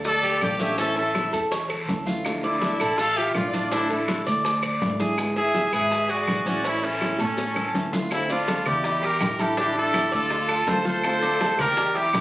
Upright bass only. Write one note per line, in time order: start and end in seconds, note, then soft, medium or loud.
0.00 0.38 D2 medium
0.42 1.28 A1 medium
1.34 1.85 E2 medium
1.89 2.75 D2 medium
2.81 3.32 A1 medium
3.35 4.21 A1 medium
4.27 4.78 D2 medium
4.82 5.68 G#1 medium
5.73 6.24 G#1 medium
6.28 7.14 A1 medium
7.19 7.71 A2 medium
7.75 8.60 D2 medium
8.67 9.18 E2 loud
9.21 10.07 A1 medium
10.12 10.64 D2 medium
10.67 11.53 D2 medium
11.59 12.10 E2 medium
12.14 12.21 A1 medium